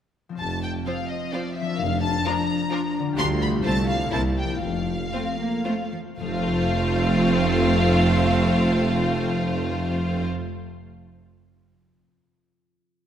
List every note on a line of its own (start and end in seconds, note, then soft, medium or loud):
0.29 1.60 F3 soft
0.29 1.79 C4 soft
0.29 1.69 F4 soft
0.35 1.79 C5 soft
0.35 0.61 A5 medium
0.39 0.79 F1 soft
0.39 0.79 F2 soft
0.39 3.13 F3 soft
0.39 1.75 C4 soft
0.63 0.71 G5 medium
0.87 0.95 F3 soft
0.87 0.95 C4 soft
0.87 0.95 F4 soft
0.87 0.95 C5 soft
0.87 1.09 F5 medium
1.09 1.33 D#5 medium
1.32 1.41 F3 soft
1.32 1.41 C4 soft
1.32 1.40 F4 soft
1.32 1.41 C5 soft
1.32 1.55 D5 medium
1.55 1.78 E5 medium
1.61 4.05 F3 medium
1.66 3.03 D4 soft
1.70 3.07 F4 soft
1.75 3.17 A#4 soft
1.79 2.18 F1 medium
1.79 2.18 F2 medium
1.79 3.15 D4 medium
1.79 2.02 F5 medium
2.03 2.25 A5 medium
2.25 2.34 F3 medium
2.25 2.34 D4 medium
2.25 2.33 F4 soft
2.25 2.33 A#4 soft
2.25 2.95 A#5 medium
2.70 2.80 F3 medium
2.70 2.80 D4 medium
2.70 2.79 F4 medium
2.70 2.78 A#4 medium
3.00 3.57 D3 medium
3.04 3.59 D4 soft
3.09 3.54 F4 soft
3.13 3.24 F4 medium
3.13 3.64 G4 soft
3.13 3.24 G4 medium
3.17 3.56 D2 medium
3.17 3.57 D2 medium
3.17 3.26 G3 medium
3.17 3.64 G3 medium
3.17 3.26 D4 medium
3.17 4.11 F4 medium
3.17 3.27 C6 loud
3.42 3.50 B5 medium
3.46 3.93 C3 medium
3.51 4.07 A3 soft
3.55 4.09 F4 soft
3.60 3.72 F4 soft
3.60 4.12 A4 soft
3.60 3.71 C5 soft
3.64 4.04 C2 medium
3.64 4.12 A3 medium
3.64 3.73 A3 medium
3.64 3.73 C4 medium
3.64 3.88 A5 medium
3.88 4.12 F5 medium
3.94 4.55 C3 soft
3.99 4.47 C4 soft
4.03 4.60 E4 soft
4.08 4.19 E4 medium
4.08 4.62 A#4 soft
4.08 4.19 C5 soft
4.12 4.53 C2 medium
4.12 4.54 C2 medium
4.12 4.62 A#3 medium
4.12 4.20 A#3 soft
4.12 4.20 C4 soft
4.12 4.62 E4 medium
4.12 4.20 A5 medium
4.37 4.62 G5 medium
4.44 6.20 F3 soft
4.49 6.27 C4 soft
4.53 6.34 F4 soft
4.58 6.41 A4 soft
4.62 5.05 F1 medium
4.62 5.05 F1 soft
4.62 5.05 F2 medium
4.62 5.91 A3 soft
4.62 5.91 F4 soft
4.62 5.91 F5 medium
5.13 5.23 A3 soft
5.13 5.38 C4 medium
5.13 5.23 C4 soft
5.13 5.21 F4 soft
5.13 5.21 C5 soft
5.39 5.65 A#3 soft
5.65 5.73 A3 medium
5.65 5.75 A3 soft
5.65 5.75 C4 soft
5.65 5.73 F4 soft
5.65 5.73 C5 soft
5.93 6.01 F3 soft
6.20 10.24 F1 medium
6.20 10.25 F1 medium
6.20 10.24 F2 medium
6.20 10.87 F3 medium
6.20 10.24 A3 medium
6.20 10.24 C4 medium
6.20 10.24 F4 medium
6.20 10.24 C5 medium
6.20 10.24 F5 medium
6.28 10.94 C4 medium
6.35 11.01 F4 medium
6.42 11.05 A4 medium
6.49 11.09 F5 medium